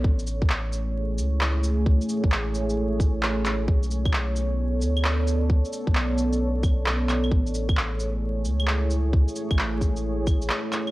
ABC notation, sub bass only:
X:1
M:4/4
L:1/16
Q:"Swing 16ths" 1/4=132
K:A
V:1 name="Sub bass" clef=bass
A,,,8- A,,,2 C,,6- | C,, z2 A,,,12- A,,, | B,,,8- B,,,2 D,,6- | D,, z2 B,,,12- B,,, |
A,,,8- A,,,2 C,,6- | C,, z2 A,,,8- A,,, z4 |]